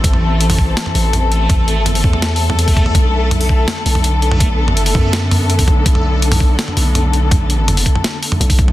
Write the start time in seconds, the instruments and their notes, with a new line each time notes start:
Already playing: string section E3 C4 A4, synth texture A3 A4
0.04 808-style bass A1, kick, closed hi-hat
0.13 mid tom
0.41 closed hi-hat
0.50 mid tom, open hi-hat
0.59 kick
0.77 snare, closed hi-hat
0.86 mid tom
0.95 808-style bass A1, open hi-hat
1.13 closed hi-hat, mid tom
1.32 closed hi-hat
1.49 kick, closed hi-hat, mid tom
1.68 808-style bass G#1, closed hi-hat
1.86 closed hi-hat, mid tom
1.92 808-style bass G1, open hi-hat
2.04 808-style bass E2, kick
2.13 mid tom
2.22 snare, closed hi-hat
2.36 open hi-hat
2.50 mid tom
2.59 closed hi-hat
2.68 kick, open hi-hat
2.77 kick, closed hi-hat
2.86 mid tom
2.95 808-style bass B1, string section D3 B3, kick, closed hi-hat, mid tom
3.31 closed hi-hat, mid tom
3.41 open hi-hat
3.49 kick
3.68 snare, closed hi-hat, mid tom
3.86 808-style bass B1, open hi-hat
3.95 mid tom
4.04 closed hi-hat
4.22 closed hi-hat
4.31 mid tom
4.40 kick, closed hi-hat
4.68 mid tom
4.77 closed hi-hat
4.86 open hi-hat
4.95 808-style bass F#2, kick, mid tom
5.13 snare, closed hi-hat
5.31 mid tom, open hi-hat
5.50 closed hi-hat
5.59 kick, open hi-hat
5.68 808-style bass B1, kick, closed hi-hat, mid tom
5.86 808-style bass B1, kick, closed hi-hat
5.95 mid tom
6.22 closed hi-hat
6.32 mid tom, open hi-hat
6.40 kick
6.59 snare, closed hi-hat
6.68 mid tom
6.77 808-style bass B1, open hi-hat
6.95 closed hi-hat, mid tom
7.13 closed hi-hat
7.31 kick, closed hi-hat, mid tom
7.50 closed hi-hat
7.68 closed hi-hat, mid tom
7.77 open hi-hat
7.86 kick, closed hi-hat
7.95 mid tom
8.04 snare, closed hi-hat
8.23 open hi-hat
8.32 mid tom
8.40 808-style bass B1, closed hi-hat
8.50 kick, open hi-hat
8.59 kick, closed hi-hat
8.68 mid tom